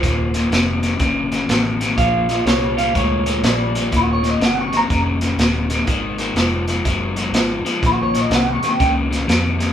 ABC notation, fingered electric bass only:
X:1
M:4/4
L:1/8
Q:"Swing" 1/4=123
K:Ebmix
V:1 name="Fingered electric bass" clef=bass
E,,,2 F,,,2 G,,,2 =A,,,2 | B,,,2 C,,2 =D,,2 B,,,2 | E,,,2 G,,,2 F,,,2 E,,,2 | A,,,2 F,,,2 _G,,,2 A,,, z |
B,,,2 C,, z D,,2 F,,2 |]